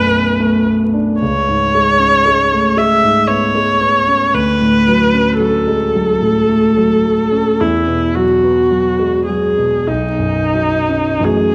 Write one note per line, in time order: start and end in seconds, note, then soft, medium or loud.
0.00 1.17 B1 soft
0.00 1.23 F#2 soft
0.00 0.40 A3 soft
0.00 0.14 B3 soft
0.00 0.94 D4 soft
0.00 0.68 B4 medium
0.14 0.57 B3 soft
0.40 0.83 A3 soft
0.67 1.10 B3 soft
0.94 1.21 D4 soft
1.21 4.32 C#2 soft
1.21 2.79 C#5 medium
1.49 1.90 G#2 soft
1.75 2.16 G#3 soft
1.99 2.41 C#4 soft
2.26 2.67 G#3 soft
2.52 2.77 A3 soft
2.77 3.19 G#3 soft
2.77 3.29 E5 medium
3.03 3.45 G#2 soft
3.27 3.72 B3 soft
3.27 4.36 C#5 soft
3.55 3.98 G#3 soft
3.81 4.24 B3 soft
4.08 4.35 C#4 soft
4.34 7.57 D2 soft
4.34 5.39 B4 soft
4.61 5.03 A2 soft
4.88 5.30 F#3 soft
5.14 5.57 C#4 soft
5.40 5.83 F#3 soft
5.40 7.62 A4 medium
5.67 5.94 G#3 soft
5.95 6.39 F#3 soft
6.21 6.66 A2 soft
6.49 6.94 A3 soft
6.77 7.22 F#3 soft
7.04 7.50 A3 soft
7.32 7.61 C#4 soft
7.60 9.84 E2 soft
7.60 8.17 E4 soft
7.88 8.32 B2 soft
8.15 8.61 F#3 soft
8.15 9.25 F#4 soft
8.44 8.88 B3 soft
8.71 9.16 F#3 soft
8.99 9.28 G#3 soft
9.26 9.76 F#3 soft
9.26 9.89 G#4 soft
9.57 9.88 B2 soft
9.87 11.21 B1 soft
9.87 11.27 D#4 soft
10.18 10.75 F#2 soft
10.54 11.11 F#3 soft
10.89 11.21 C#4 soft
11.20 11.55 F#2 soft
11.20 11.55 E3 soft
11.20 11.55 A3 soft
11.20 11.55 C#4 soft
11.24 11.55 F#4 soft
11.24 11.55 G#4 medium